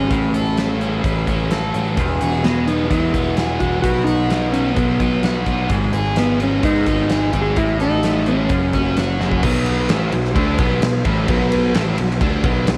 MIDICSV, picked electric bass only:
0, 0, Header, 1, 2, 480
1, 0, Start_track
1, 0, Tempo, 465477
1, 106, Time_signature, 4, 2, 24, 8
1, 13174, End_track
2, 0, Start_track
2, 0, Title_t, "Picked electric bass"
2, 0, Program_c, 0, 34
2, 110, Note_on_c, 0, 33, 93
2, 1030, Note_off_c, 0, 33, 0
2, 1074, Note_on_c, 0, 33, 85
2, 1290, Note_off_c, 0, 33, 0
2, 1318, Note_on_c, 0, 33, 85
2, 1755, Note_off_c, 0, 33, 0
2, 1801, Note_on_c, 0, 33, 84
2, 2015, Note_off_c, 0, 33, 0
2, 2032, Note_on_c, 0, 28, 99
2, 2251, Note_off_c, 0, 28, 0
2, 2288, Note_on_c, 0, 28, 79
2, 2962, Note_off_c, 0, 28, 0
2, 2997, Note_on_c, 0, 40, 99
2, 3215, Note_off_c, 0, 40, 0
2, 3237, Note_on_c, 0, 28, 85
2, 3677, Note_off_c, 0, 28, 0
2, 3720, Note_on_c, 0, 28, 84
2, 3937, Note_off_c, 0, 28, 0
2, 3957, Note_on_c, 0, 35, 95
2, 4880, Note_off_c, 0, 35, 0
2, 4916, Note_on_c, 0, 35, 87
2, 5136, Note_off_c, 0, 35, 0
2, 5157, Note_on_c, 0, 35, 86
2, 5599, Note_off_c, 0, 35, 0
2, 5634, Note_on_c, 0, 35, 82
2, 5856, Note_off_c, 0, 35, 0
2, 5876, Note_on_c, 0, 32, 95
2, 6097, Note_off_c, 0, 32, 0
2, 6115, Note_on_c, 0, 32, 77
2, 6799, Note_off_c, 0, 32, 0
2, 6842, Note_on_c, 0, 44, 101
2, 7061, Note_off_c, 0, 44, 0
2, 7085, Note_on_c, 0, 32, 80
2, 7524, Note_off_c, 0, 32, 0
2, 7562, Note_on_c, 0, 32, 83
2, 7781, Note_off_c, 0, 32, 0
2, 7808, Note_on_c, 0, 33, 102
2, 8725, Note_off_c, 0, 33, 0
2, 8763, Note_on_c, 0, 30, 96
2, 8981, Note_off_c, 0, 30, 0
2, 9012, Note_on_c, 0, 30, 98
2, 9446, Note_off_c, 0, 30, 0
2, 9481, Note_on_c, 0, 30, 85
2, 9699, Note_off_c, 0, 30, 0
2, 9729, Note_on_c, 0, 35, 100
2, 10171, Note_off_c, 0, 35, 0
2, 10213, Note_on_c, 0, 33, 84
2, 10430, Note_off_c, 0, 33, 0
2, 10443, Note_on_c, 0, 35, 86
2, 10664, Note_off_c, 0, 35, 0
2, 10677, Note_on_c, 0, 38, 102
2, 10901, Note_off_c, 0, 38, 0
2, 10919, Note_on_c, 0, 35, 95
2, 11141, Note_off_c, 0, 35, 0
2, 11163, Note_on_c, 0, 35, 75
2, 11383, Note_off_c, 0, 35, 0
2, 11397, Note_on_c, 0, 33, 100
2, 11619, Note_off_c, 0, 33, 0
2, 11637, Note_on_c, 0, 35, 104
2, 12081, Note_off_c, 0, 35, 0
2, 12125, Note_on_c, 0, 33, 90
2, 12342, Note_off_c, 0, 33, 0
2, 12370, Note_on_c, 0, 35, 89
2, 12584, Note_off_c, 0, 35, 0
2, 12592, Note_on_c, 0, 38, 100
2, 12814, Note_off_c, 0, 38, 0
2, 12828, Note_on_c, 0, 35, 99
2, 13051, Note_off_c, 0, 35, 0
2, 13075, Note_on_c, 0, 35, 80
2, 13174, Note_off_c, 0, 35, 0
2, 13174, End_track
0, 0, End_of_file